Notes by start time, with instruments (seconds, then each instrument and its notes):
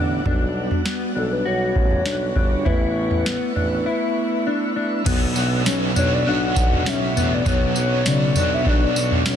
Already playing: tuba A1, tonewheel organ D3 B3 D4, clean electric guitar D4
0.26 tuba B1, tonewheel organ G3 B3 F#4, clean electric guitar D4, kick, floor tom
0.71 floor tom
0.85 clean electric guitar B3, snare
1.15 tuba B1, clean electric guitar D4, soft synth lead A4
1.32 soft synth lead B4
1.45 tuba B1, clean electric guitar F#4, soft synth lead C#5
1.76 tuba A1, kick
1.91 floor tom
2.05 tuba B1, clean electric guitar D4, snare
2.36 tuba G1, clean electric guitar D4, kick, floor tom
2.65 tuba A1, tonewheel organ A3 E4, clean electric guitar E4, soft synth lead B4, kick, floor tom
3.11 floor tom
3.26 clean electric guitar B3, snare
3.56 tuba A1, clean electric guitar D4, floor tom
3.86 clean electric guitar E4
4.47 clean electric guitar D4
4.76 clean electric guitar D4
5.04 tuba B1, overdriven electric guitar B2 F#3 B3 D4 F#4 C#5, tonewheel organ B2 B3, clean electric guitar B3, kick, floor tom, crash, tambourine
5.34 tuba B1, overdriven electric guitar F#4 C#5, tambourine
5.38 overdriven electric guitar B3 D4
5.65 tuba B1, overdriven electric guitar B2 F#3 B3 D4 F#4 C#5, clean electric guitar C#4, snare, tambourine
5.95 tuba B1, clean electric guitar D4, overdriven electric guitar D4 F#4 C#5, soft synth lead C#5, floor tom, tambourine
6.00 overdriven electric guitar B3
6.14 soft synth lead D5
6.25 tuba B1, overdriven electric guitar B3 D4 F#4, clean electric guitar D4
6.29 overdriven electric guitar C#5, soft synth lead F#5
6.54 tuba B1, overdriven electric guitar D4 F#4 C#5, kick, tambourine
6.59 overdriven electric guitar B3
6.71 floor tom
6.84 tuba B1, overdriven electric guitar B2 F#3 B3 D4, clean electric guitar C#4, snare, tambourine
6.89 soft synth lead E5
7.14 tuba A1, clean electric guitar B3, overdriven electric guitar D4 F#4 C#5, floor tom, tambourine
7.20 overdriven electric guitar B3
7.34 soft synth lead D5
7.44 tuba B1, overdriven electric guitar B2 F#3 B3 D4 F#4 C#5, clean electric guitar B3, soft synth lead C#5, kick, floor tom, tambourine
7.75 tuba B1, overdriven electric guitar D4 F#4 C#5, tambourine
7.79 overdriven electric guitar B3
7.92 soft synth lead C#5
8.04 tuba B1, overdriven electric guitar B2 F#3 B3, clean electric guitar C#3, soft synth lead D5, snare, tambourine
8.34 tuba B1, clean electric guitar D4, overdriven electric guitar D4 F#4 C#5, floor tom, tambourine
8.40 overdriven electric guitar B3
8.54 soft synth lead E5
8.65 tuba B1, overdriven electric guitar B3 D4 F#4, clean electric guitar D4, soft synth lead D5, kick
8.95 tuba B1, overdriven electric guitar B3 D4 F#4, tambourine
9.12 floor tom
9.25 tuba B1, overdriven electric guitar B2 F#3 B3 D4 F#4 C#5, clean electric guitar C#4, snare, tambourine